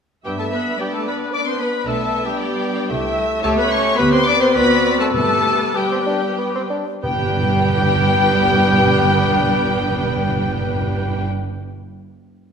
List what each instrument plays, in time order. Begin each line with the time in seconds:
0.25 double bass section G2, cello section G3, bassoon B3, french horn section B3 D4, clarinet D4, oboe G4, flute section G4, violin section G4 G5, viola section E5
0.39 cello section A3, violin section A4 A5, oboe A4, flute section A4
0.52 cello section B3, flute section B4, violin section B4 B5, oboe B4
0.79 cello section G3, bassoon B3, clarinet D4, violin section G4 G5, flute section G4, oboe G4, viola section D5
0.93 cello section A3, flute section A4, violin section A4 A5, oboe A4
1.07 cello section B3, violin section B4 B5, flute section B4, oboe B4
1.33 bassoon B3, clarinet D4, cello section D4, viola section B4, violin section D5 D6, oboe D5, flute section D5
1.47 cello section C4, violin section C5 C6, oboe C5, flute section C5
1.60 cello section B3, violin section B4 B5, flute section B4, oboe B4
1.86 double bass section B1, cello section A3, bassoon B3, clarinet D4, violin section A4 A5, flute section A4, oboe A4, viola section E5
2.26 cello section G3, violin section G4 G5, oboe G4, flute section G4
2.39 viola section D5
2.90 double bass section C2, french horn section A3 E4, bassoon A3, clarinet E4, viola section E5
3.44 double bass section C#2, cello section A3, french horn section A3 G4, bassoon A3, clarinet G4, violin section A4 A5, oboe A4, flute section A4, viola section C#5
3.57 cello section B3, violin section B4 B5, flute section B4, oboe B4
3.70 cello section C#4, violin section C#5 C#6, oboe C#5, flute section C#5
3.97 double bass section D2, cello section B3, bassoon B3, french horn section B3 G4, clarinet G4, viola section B4, violin section B4 B5, oboe B4, flute section B4
4.11 cello section C4, flute section C5, violin section C5 C6, oboe C5
4.26 cello section D4, flute section D5, violin section D5 D6, oboe D5
4.40 cello section C4, flute section C5, oboe C5, violin section C5 C6
4.54 double bass section D2, cello section B3, french horn section C4 F#4, bassoon C4, clarinet F#4, oboe B4, violin section B4 B5, flute section B4, viola section D5
4.98 cello section A3, violin section A4 A5, oboe A4, flute section A4
5.13 timpani G2, double bass section G2, cello section A3, french horn section B3 G4, bassoon B3, clarinet G4, violin section A4 A5, oboe A4, flute section A4, viola section B4
5.75 cello section G3, bassoon B3, french horn section B3 G4, flute section G4, violin section G4 G5, oboe G4, clarinet G4
5.92 bassoon C4
6.07 bassoon D4
6.38 bassoon B3
6.56 bassoon C4
6.70 bassoon D4
7.03 double bass section G1, timpani G2, cello section G3, bassoon B3, french horn section B3 G4, viola section D4 B4, clarinet G4, violin section G4 G5, oboe G5, flute section G5
7.10 timpani G2
7.17 timpani G2
7.23 timpani G2
7.30 timpani G2
7.37 timpani G2
7.43 timpani G2
7.50 timpani G2
7.56 timpani G2
7.63 timpani G2
7.70 timpani G2
7.75 timpani G2
7.82 timpani G2
7.88 timpani G2
7.95 timpani G2
8.01 timpani G2
8.08 timpani G2
8.15 timpani G2
8.21 timpani G2
8.28 timpani G2
8.34 timpani G2
8.41 timpani G2
8.47 timpani G2
8.53 timpani G2
8.60 timpani G2
8.66 timpani G2
8.73 timpani G2
8.80 timpani G2
8.86 timpani G2
8.93 timpani G2
8.99 timpani G2
9.06 timpani G2
9.12 timpani G2
9.19 timpani G2
9.25 timpani G2
9.31 timpani G2
9.37 timpani G2
9.44 timpani G2
9.51 timpani G2
9.57 timpani G2
9.63 timpani G2
9.70 timpani G2
9.77 timpani G2
9.83 timpani G2
9.90 timpani G2
9.96 timpani G2
10.03 timpani G2
10.09 timpani G2
10.17 timpani G2
10.24 timpani G2
10.30 timpani G2
10.36 timpani G2
10.43 timpani G2
10.49 timpani G2
10.55 timpani G2
10.62 timpani G2
10.69 timpani G2
10.75 timpani G2
10.82 timpani G2
10.89 timpani G2
10.95 timpani G2
11.02 timpani G2
11.08 timpani G2
11.15 timpani G2